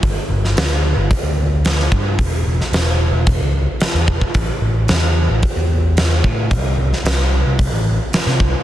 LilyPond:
<<
  \new Staff \with { instrumentName = "Picked electric bass" } { \clef bass \time 4/4 \key g \lydian \tempo 4 = 111 g,,16 r16 g,,8 d,8. g,,16 r16 d,4~ d,16 g,8 | e,,8 e,,16 r16 e,,8. e,,8 cis,8 r8 e,16 e,,16 r16 | a,,16 r16 a,,8 e,8. a,,16 r16 e,4~ e,16 a,8 | c,8 c,16 r16 c,8. c,8 a,,8 r8 c16 c,16 r16 | }
  \new DrumStaff \with { instrumentName = "Drums" } \drummode { \time 4/4 <hho bd>8. sn16 <hho sn>4 <hho bd>4 <hho sn>16 sn16 bd8 | <hho bd>8. sn16 <hho sn>4 <hho bd>4 <hho sn>8 bd16 bd16 | <hho bd>4 <hho sn>4 <hho bd>4 <hho sn>8 bd8 | <hho bd>8. sn16 <hho sn>4 <hho bd>4 <hho sn>16 sn16 bd8 | }
>>